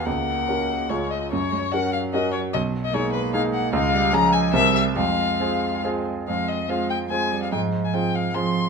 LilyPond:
<<
  \new Staff \with { instrumentName = "Violin" } { \time 3/4 \key fis \major \tempo 4 = 145 fis''2 cis''8 dis''8 | cis''4 fis''8 eis''8 dis''8 cis''8 | dis''8. dis''16 cis''8 b'8 eis''8 fis''8 | \key f \minor f''4 bes''8 aes''8 e''8 e''8 |
f''2 r4 | f''8 ees''8 f''8 g''8 aes''8. f''16 | g''8. aes''16 g''8 f''8 c'''4 | }
  \new Staff \with { instrumentName = "Grand piano" } { \time 3/4 \key fis \major cis,4 <cis' fis' ais'>4 <cis, cis' eis' gis'>4 | fis,4 <cis' fis' ais'>4 <cis' fis' ais'>4 | b,,4 <gis dis' gis'>4 <gis dis' gis'>4 | \key f \minor des,4 <aes des' aes'>4 <c, c' g' bes'>4 |
f,4 <c' f' aes'>4 <c' f' aes'>4 | f,4 <c' f' aes'>4 <c' f' aes'>4 | aes,4 <c' f' aes'>4 <c' f' aes'>4 | }
  \new Staff \with { instrumentName = "Cello" } { \clef bass \time 3/4 \key fis \major ais2 gis8 r8 | ais8 gis8 fis2~ | fis4 ais2 | \key f \minor aes8 g8 f4 g4 |
aes2~ aes8 r8 | aes4 aes4 aes8 g8 | f2 f4 | }
>>